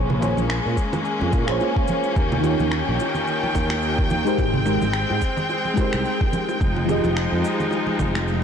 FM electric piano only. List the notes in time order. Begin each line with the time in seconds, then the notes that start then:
Already playing: A#3 F4 G#4 C5 C#5
0.20 A#3 F4 G#4 C5 C#5
1.44 A#3 F4 G#4
1.49 C5 C#5
2.40 D#3 D#4 F4
2.45 G4 C#5
4.25 G#3 D#4 G4 A#4 C5
4.65 G#3 D#4 G4 A#4 C5
5.74 G#3 D#4 G4
5.79 A#4 C5
6.85 F3 F4 G4
6.90 G#4 D#5